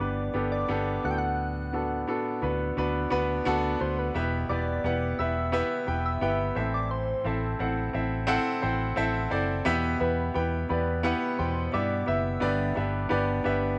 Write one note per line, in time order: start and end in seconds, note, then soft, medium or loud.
0.00 0.28 G1 medium
0.00 1.05 G2 medium
0.00 1.05 D3 medium
0.00 0.34 B3 medium
0.00 0.34 D4 medium
0.00 0.34 G4 medium
0.00 1.06 B4 medium
0.00 0.51 D5 loud
0.00 1.06 D5 medium
0.34 0.63 G1 medium
0.34 0.64 B3 medium
0.34 0.64 D4 medium
0.34 0.65 G4 medium
0.34 0.65 A4 medium
0.52 1.06 D5 loud
0.68 0.97 G1 medium
0.68 0.99 B3 loud
0.68 0.99 D4 medium
0.68 0.99 G4 medium
0.68 1.00 A4 loud
1.04 2.03 D2 medium
1.04 2.04 A2 medium
1.04 1.64 B3 medium
1.04 1.64 D4 medium
1.04 1.65 F#4 medium
1.04 1.65 A4 medium
1.04 1.12 F#5 loud
1.11 1.20 G5 loud
1.18 2.42 F#5 loud
1.73 2.03 B3 medium
1.73 2.03 D4 medium
1.73 2.03 F#4 medium
1.73 2.04 A4 medium
2.07 2.38 B3 medium
2.07 2.38 D4 medium
2.07 2.38 F#4 medium
2.07 2.38 A4 medium
2.42 2.71 D2 medium
2.42 2.72 B3 medium
2.42 2.72 D4 medium
2.42 2.73 F#4 medium
2.42 2.73 B4 medium
2.77 3.05 D2 medium
2.77 3.07 B3 medium
2.77 3.07 D4 medium
2.77 3.07 F#4 medium
2.77 3.07 B4 medium
3.10 3.40 D2 medium
3.10 3.41 B3 loud
3.10 3.41 D4 medium
3.10 3.41 F#4 medium
3.10 3.41 B4 loud
3.45 3.74 D2 loud
3.45 3.76 B3 loud
3.45 3.76 D4 loud
3.45 3.76 F#4 loud
3.45 3.76 A4 loud
3.80 4.09 D2 medium
3.80 4.10 B3 medium
3.80 4.10 D4 medium
3.80 4.10 F#4 medium
3.80 4.11 A4 medium
3.80 4.00 C5 loud
3.99 4.14 B4 medium
4.14 4.43 E1 loud
4.14 5.14 B2 medium
4.14 4.45 B3 medium
4.14 4.45 E4 medium
4.14 4.45 G4 medium
4.14 4.51 B4 loud
4.14 4.45 B4 medium
4.14 4.45 E5 medium
4.49 4.78 E1 loud
4.49 4.79 B3 medium
4.49 4.79 E4 medium
4.49 4.80 G4 medium
4.49 4.80 B4 medium
4.49 5.20 D5 loud
4.49 4.80 D5 medium
4.84 5.12 E1 loud
4.84 5.14 B3 medium
4.84 5.14 E4 medium
4.84 5.14 G4 medium
4.84 5.14 B4 medium
4.84 5.15 F#5 medium
5.19 5.61 E1 medium
5.19 5.48 B3 medium
5.19 5.49 E4 medium
5.19 5.49 G4 medium
5.19 5.49 B4 medium
5.19 6.05 E5 loud
5.19 5.49 E5 medium
5.52 5.82 B3 loud
5.52 5.83 E4 medium
5.52 5.83 G4 medium
5.52 5.83 B4 medium
5.52 5.83 E5 loud
5.87 6.16 E1 loud
5.87 6.17 B3 medium
5.87 6.17 E4 medium
5.87 6.17 G4 medium
5.87 6.18 B4 medium
5.87 6.18 G5 medium
6.06 6.76 E5 loud
6.21 6.50 G1 loud
6.21 6.52 B3 medium
6.21 6.52 E4 medium
6.21 6.52 G4 medium
6.21 6.52 B4 medium
6.21 6.52 G5 medium
6.55 7.13 A1 loud
6.55 7.55 A2 medium
6.55 7.55 E3 medium
6.55 7.16 C4 medium
6.55 7.16 E4 medium
6.55 7.16 A4 medium
6.55 7.16 C5 medium
6.55 7.17 E5 medium
6.74 6.90 D5 medium
6.91 7.28 C5 loud
7.24 7.53 A1 medium
7.24 7.55 C4 medium
7.24 7.55 E4 medium
7.24 7.55 A4 medium
7.24 7.95 A4 medium
7.24 7.55 C5 medium
7.24 7.56 E5 medium
7.59 7.88 A1 loud
7.59 7.89 C4 medium
7.59 7.90 E4 medium
7.59 7.90 A4 medium
7.59 7.90 C5 medium
7.59 7.90 F#5 medium
7.93 8.37 A1 loud
7.93 8.24 C4 medium
7.93 8.24 E4 medium
7.93 8.24 A4 medium
7.93 8.24 C5 medium
7.93 8.24 E5 medium
8.27 8.58 C4 loud
8.27 8.58 E4 loud
8.27 8.58 A4 loud
8.27 8.58 C5 loud
8.27 8.58 F#5 loud
8.62 8.91 A1 loud
8.62 8.92 C4 medium
8.62 8.93 E4 medium
8.62 8.93 A4 medium
8.62 8.93 C5 medium
8.62 8.93 G5 medium
8.96 9.26 A1 loud
8.96 9.27 C4 loud
8.96 9.27 E4 medium
8.96 9.27 A4 medium
8.96 9.27 C5 medium
8.96 9.27 E5 loud
9.30 9.60 F#1 medium
9.30 9.61 C4 medium
9.30 9.61 E4 medium
9.30 9.62 A4 medium
9.30 9.62 C5 medium
9.30 9.62 D5 loud
9.65 9.95 E2 loud
9.65 10.65 B2 medium
9.65 9.96 B3 loud
9.65 9.96 E4 medium
9.65 9.96 G4 loud
9.65 9.96 B4 loud
9.65 9.96 E5 loud
10.00 10.29 E2 loud
10.00 10.30 B3 medium
10.00 10.31 E4 medium
10.00 10.31 G4 medium
10.00 10.33 B4 medium
10.00 10.31 B4 medium
10.00 10.31 E5 medium
10.34 10.64 E2 loud
10.34 10.65 B3 medium
10.34 10.65 E4 medium
10.34 10.65 G4 medium
10.34 10.65 B4 medium
10.34 10.49 B4 medium
10.34 10.66 G5 medium
10.69 11.13 E2 loud
10.69 11.00 B3 medium
10.69 11.00 E4 medium
10.69 11.00 G4 medium
10.69 11.35 B4 medium
10.69 11.00 B4 medium
10.69 11.00 D5 medium
11.03 11.34 B3 loud
11.03 11.34 E4 loud
11.03 11.34 G4 medium
11.03 11.35 B4 medium
11.03 11.35 F#5 loud
11.38 11.67 E2 medium
11.38 11.69 B2 medium
11.38 11.69 E4 medium
11.38 11.69 G4 medium
11.38 11.75 C5 loud
11.38 11.69 G5 medium
11.72 12.02 G2 loud
11.72 12.03 B3 medium
11.72 12.03 E4 medium
11.72 12.04 G4 medium
11.72 12.04 B4 medium
11.72 12.09 D5 loud
11.72 12.04 E5 loud
12.06 12.36 F#1 medium
12.06 12.37 B3 medium
12.06 12.37 E4 medium
12.06 12.37 G4 medium
12.06 12.38 B4 medium
12.06 12.38 E5 medium
12.06 12.77 E5 loud
12.40 12.71 G1 loud
12.40 13.41 G2 medium
12.40 13.41 D3 medium
12.40 12.71 B3 loud
12.40 12.72 D4 medium
12.40 12.72 G4 medium
12.40 12.72 B4 medium
12.40 12.72 D5 loud
12.75 13.05 G1 loud
12.75 13.06 B3 medium
12.75 13.06 D4 medium
12.75 13.07 G4 medium
12.75 13.07 B4 medium
12.75 13.07 E5 medium
13.09 13.40 G1 medium
13.09 13.40 B3 medium
13.09 13.41 D4 medium
13.09 13.41 G4 medium
13.09 13.41 B4 medium
13.09 13.41 D5 loud
13.44 13.79 G1 medium
13.44 13.75 B3 medium
13.44 13.75 D4 medium
13.44 13.75 G4 medium
13.44 13.76 B4 medium
13.44 13.76 E5 loud